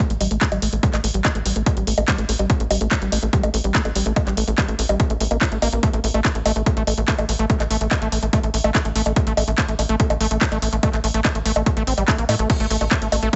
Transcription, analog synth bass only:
0.10 A1
0.21 A1
0.31 A1
0.52 A1
0.62 A1
0.73 A1
0.93 A1
1.04 A1
1.14 A1
1.35 A1
1.46 A1
1.56 A1
1.77 A1
1.87 A1
1.98 A1
2.18 A1
2.29 A1
2.39 A1
2.60 A1
2.71 A1
2.81 A1
3.02 A1
3.12 A1
3.23 A1
3.43 A1
3.54 A1
3.64 A1
3.85 A1
3.96 A1
4.06 A1
4.27 A1
4.37 A1
4.48 A1
4.68 A1
4.79 A1
4.89 A1
5.10 A1
5.21 A1
5.31 A1
5.52 A1
5.62 A1
5.73 A1
5.93 A1
6.04 A1
6.14 A1
6.35 A1
6.46 A1
6.56 A1
6.77 A1
6.87 A1
6.98 A1
7.18 A1
7.29 A1
7.39 A1
7.60 A1
7.71 A1
7.81 A1
8.02 A1
8.12 A1
8.23 A1
8.43 A1
8.54 A1
8.64 A1
8.85 A1
8.96 A1
9.06 A1
9.27 A1
9.37 A1
9.48 A1
9.68 A1
9.79 A1
9.89 A1
10.10 A1
10.21 A1
10.31 A1
10.52 A1
10.62 A1
10.73 A1
10.93 A1
11.04 A1
11.14 A1
11.35 A1
11.46 A1
11.56 A1
11.77 A1
11.87 A1
11.98 A1
12.18 A#1
12.29 A2
12.39 A1
12.60 A1
12.71 A1
12.81 A1
13.02 A1
13.12 A1
13.23 A1

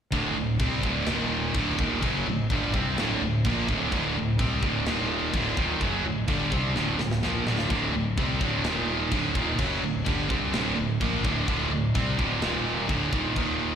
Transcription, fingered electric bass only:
0.12 D1
0.36 D1
0.59 C2
0.83 D1
1.07 D#1
1.54 D1
1.79 D#1
2.03 F#1
2.28 D1
2.50 G1
2.74 C2
2.99 D1
3.22 D1
3.45 A#1
3.68 D1
3.92 D1
4.17 D1
4.39 C2
4.63 D1
4.87 D#1
5.34 D1
5.57 D#1
5.81 F#1
6.05 D1
6.28 G1
6.52 C2
6.76 D1
7.00 D1
7.24 A#1
7.47 D1
7.70 D1
7.94 D1
8.18 C2
8.41 D1
8.65 D#1
9.12 D1
9.36 D#1
9.58 F#1
9.84 D1
10.06 G1
10.30 C2
10.54 D1
10.78 D1
11.01 A#1
11.24 D1
11.48 D1
11.71 D1
11.95 C2
12.19 D1
12.43 D#1
12.90 D1
13.13 D#1
13.37 D#1

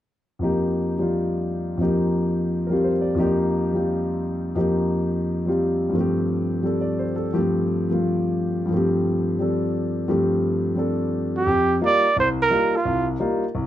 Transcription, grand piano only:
0.39 F2 F3 A#3 D#4
0.44 G4
0.98 F3 G3 D4 F4
1.77 F2 F3 A#3 D#4
1.83 G4
2.67 G3 C4 A#4
2.72 F4 G4
2.84 C5
3.01 D5
3.15 F2 F3 A#3 D#4
3.20 G4
3.73 G3 C4 F4 G4
4.55 F2 F3 A#3 D#4 G4
5.46 G3 C4 F4 G4
5.89 G2 F3
5.95 A3 C4
6.01 G4
6.63 G3 C4 D4 A4
6.81 D5
6.99 C5
7.16 A4
7.33 G2 F3 A3 C4 G4
7.89 F3 G3 A3 F4
8.66 G2 F3
8.71 A3 C4
8.77 G4
9.39 G3 C4 D4 A4
10.08 G2 F3 A3 C4 G4
10.76 G3 C4 D4 A4
11.47 F2
11.81 G3 A#3 D#4 F4
12.16 C2
12.50 G3 A#3 D#4 F4
12.85 C2
13.20 G3 A#3 D#4 F4
13.55 C2

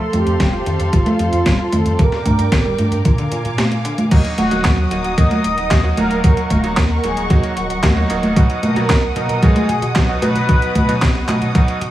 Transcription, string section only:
Already playing: A4 C5 F5 C6
1.99 A#4 D5 G5 D6
3.05 F5 G#5 D6
4.11 A#4 D#5 F#5 D#6
6.24 C#6
8.37 F#4 D#6

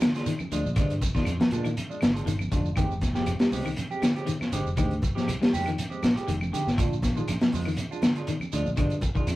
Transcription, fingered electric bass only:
0.52 D2
0.65 A#1
0.77 G2
1.26 F2
1.52 A#2
2.02 G#1
2.26 G1
2.52 F1
2.77 F1
3.26 F1
3.52 C2
4.52 G#1
4.66 F1
4.78 D2
5.28 C2
5.53 F2
6.03 A#1
6.17 muted fingered electric bass stroke
6.28 F1
6.67 G#1
6.79 A#1
7.29 A#1
7.42 muted fingered electric bass stroke
7.54 F2
8.53 D2
8.66 A#1
8.78 G2
9.27 F2

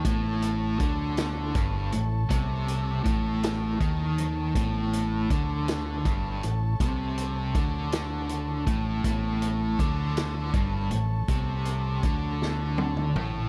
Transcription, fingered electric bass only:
0.05 A1
0.80 D2
1.55 G1
1.94 A1
2.30 C2
3.06 A1
3.80 D#2
4.55 A1
5.30 D2
6.06 G1
6.44 A1
6.80 C2
7.55 D2
8.67 A1
9.04 A1
9.79 D2
10.53 G1
10.91 A1
11.28 C2
12.04 D2
13.15 A1

